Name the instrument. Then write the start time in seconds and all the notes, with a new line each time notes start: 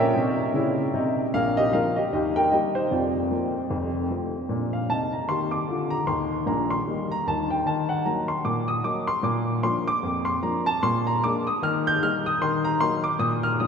upright piano
Already playing: A#2 C#4 C#5 G5
0.00 A#4 E5
0.14 C3 D#4
0.54 C#3 E4
0.94 C3 D#4
1.34 A#1 A#2 A#4 F5
1.57 G4 D#5
1.73 F3 A#3 D4 A#4 F5
1.96 G4 D#5
2.13 D#2 D#3 G4 D#5
2.36 A#4 G5
2.51 G3 A#3 G4 D#5
2.75 D#4 C5
2.91 F1 F2 F4 D5
3.30 F3 A#3
3.70 F1 F2
4.10 F3 A3 C4
4.49 A#2 D4
4.73 F5
4.89 C3 D#4 A5
5.13 A#5
5.28 D#3 G4 C6
5.51 D6
5.68 D3 F4
5.90 A#5
6.07 D#2 D#3 C6
6.46 A#1 A#2 A#5
6.70 C6
6.87 G3 A#3 D#4
7.12 A#5
7.27 D#2 D#3 A5
7.50 G5
7.66 D#3 A5
7.89 F#5
8.05 F#3 A#3 D#4 A#5
8.28 C6
8.45 A#2 D6
8.68 D#6
8.84 F#3 A#3 D#4 D6
9.07 C6
9.23 A#2 D6
9.63 F3 A#3 D4 C6
9.88 D6
10.03 F2
10.25 C6
10.42 F3 A#3 D4 A#5
10.66 A5
10.83 A#2 C6
11.07 A#5
11.23 G#3 A#3 D4 D6
11.47 D#6
11.62 D#3 F6
11.87 G6
12.03 G3 A#3 D#4 F6
12.26 D#6
12.41 D#3 C6
12.65 A#5
12.81 F#3 A#3 D#4 C6
13.04 D6
13.19 A#2 D#6
13.43 F6
13.60 F3 A#3 D4 D#6